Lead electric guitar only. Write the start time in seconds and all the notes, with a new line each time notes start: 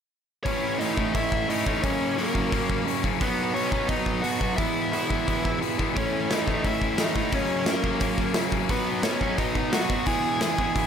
0.44 C#4 C#5
0.78 D#4 D#5
1.15 E4 E5
1.50 D#4 D#5
1.83 C#4 C#5
2.18 A#3 A#4
3.22 B3 B4
3.55 C#4 C#5
3.88 D#4 D#5
4.22 F#4 F#5
4.56 E4 E5
4.92 E4 E5
5.96 C#4 C#5
6.32 D#4 D#5
6.66 E4 E5
7.00 D#4 D#5
7.33 C#4 C#5
7.68 A#3 A#4
8.71 B3 B4
9.04 C#4 C#5
9.39 D#4 D#5
9.73 F#4 F#5
10.07 G#4 G#5
10.42 G#4 G#5